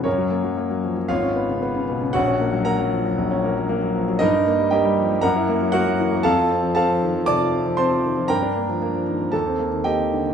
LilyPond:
<<
  \new Staff \with { instrumentName = "Grand piano" } { \time 4/4 \key fis \major \tempo 4 = 117 <cis' ais' cis''>2 <eis' cis'' eis''>2 | <fis' cis'' fis''>4 <ais' fis'' ais''>2. | \key f \mixolydian <ees' bes' ees''>4 <g' ees'' g''>4 <bes' ges'' bes''>4 <ges' bes' ges''>4 | <a' f'' a''>4 <a' f'' a''>4 <d'' a'' d'''>4 <c'' a'' c'''>4 |
<bes' g'' bes''>2 <a' a''>4 <g' ees'' g''>4 | }
  \new Staff \with { instrumentName = "Grand piano" } { \clef bass \time 4/4 \key fis \major fis,16 fis16 ais16 fis16 ais16 fis16 eis16 fis16 gis,,16 cis'16 b16 cis16 b16 cis16 b,16 cis16 | ais,,16 cis'16 ais16 fis16 ais16 fis16 eis16 fis16 ais,,16 cis'16 ais16 fis16 ais16 fis16 eis16 fis16 | \key f \mixolydian g,16 ees'16 bes16 g16 bes16 g16 f16 g16 ges,16 fes'16 bes16 ges16 bes16 ges16 fes16 bes16 | f,16 f'16 c'16 f16 c'16 f16 ees16 f16 c16 f'16 c'16 f16 c'16 f16 ees16 f16 |
g,16 d'16 bes16 f16 bes16 f16 ees16 f16 ees,16 c'16 bes16 ees16 bes16 ees16 d16 ees16 | }
>>